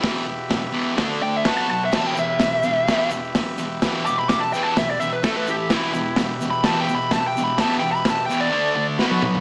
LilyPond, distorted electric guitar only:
\new Staff \with { instrumentName = "Distorted electric guitar" } { \clef bass \time 4/4 \key e \minor \tempo 4 = 128 <e, b, e>8 <e, b,>8 <e, b,>8 <e, b, e>8 <d a d'>8 <d a>8 <b, fis b>8 <b, fis>8 | <e, b, e>8 <e, b,>8 <e, b,>8 <e, b,>8 <e, b, e>8 <e, b,>8 <e, b,>8 <e, b,>8 | <e, b, e>8 <e, b,>8 <e, b,>8 <e, b, e>8 <e, b,>8 <e, b,>8 <a, e a>8 <a, e>8 | <e, b, e>8 <e, b,>8 <e, b,>8 <e, b,>8 <e, b, e>8 <e, b,>8 <e, b,>8 <e, b,>8 |
<e, b, e>8 <e, b,>8 <e, b,>8 <e, b, e>8 <d a d'>8 <d a>8 <b, fis b>8 <b, fis>8 | }